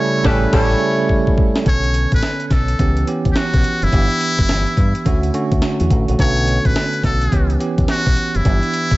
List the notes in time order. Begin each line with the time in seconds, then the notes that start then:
Already playing: C#3 G3 A3 C#4 E4 G4 A4
0.00 C#5
0.24 A1 G3 A3 C#4 E4 G4 A4 B4, kick, snare
0.52 A1 G3 A3 C#4 E4 G4 A4 C#5, kick, snare, crash
1.09 kick
1.27 kick
1.38 kick
1.56 snare
1.65 B1 D3 B3 C#4 A4 C#5, kick, closed hi-hat
1.84 closed hi-hat
1.94 closed hi-hat
2.12 A1 B4, kick, closed hi-hat
2.23 snare, closed hi-hat
2.40 closed hi-hat
2.47 B1 B4, kick, snare, closed hi-hat
2.52 A4
2.68 closed hi-hat
2.79 C#2 E3 B3 C#4 G4, kick, closed hi-hat
2.97 closed hi-hat
3.07 E3 B3 C#4 G4, closed hi-hat
3.25 C#2, kick, closed hi-hat
3.32 G4, snare, closed hi-hat
3.37 F#4
3.54 B1, kick, closed hi-hat
3.64 closed hi-hat
3.82 F#1 E4, closed hi-hat
3.92 G1 E3 B3 D4 G4, kick, closed hi-hat
4.10 closed hi-hat
4.21 closed hi-hat
4.39 G1, kick, closed hi-hat
4.49 G1, snare, closed hi-hat
4.66 closed hi-hat
4.77 G2, kick, closed hi-hat
4.95 closed hi-hat
5.05 D2 D3 A3 C#4 F#4, kick, closed hi-hat
5.23 closed hi-hat
5.34 D3 A3 C#4 F#4, closed hi-hat
5.52 D2, kick, closed hi-hat
5.62 snare, closed hi-hat
5.80 E2 A3 F#4, closed hi-hat
5.90 A1 C#4 A4, kick, closed hi-hat
6.08 A#1 A3 F#4, closed hi-hat
6.18 B1 D3 B3 C#4 A4 C#5, kick, closed hi-hat
6.37 closed hi-hat
6.47 closed hi-hat
6.65 A1 B4, kick, closed hi-hat
6.76 snare, closed hi-hat
6.93 closed hi-hat
7.03 B1 A4, kick, snare, closed hi-hat
7.22 closed hi-hat
7.31 C#2 E3 B3 C#4 G4, kick, closed hi-hat
7.50 closed hi-hat
7.60 E3 B3 C#4 G4, closed hi-hat
7.78 C#2, kick, closed hi-hat
7.88 F#4, snare, closed hi-hat
8.06 B1, kick, closed hi-hat
8.17 closed hi-hat
8.35 F#1 E4, closed hi-hat
8.45 G1 E3 B3 D4 G4, kick, closed hi-hat
8.63 closed hi-hat
8.74 closed hi-hat
8.91 G1, kick, closed hi-hat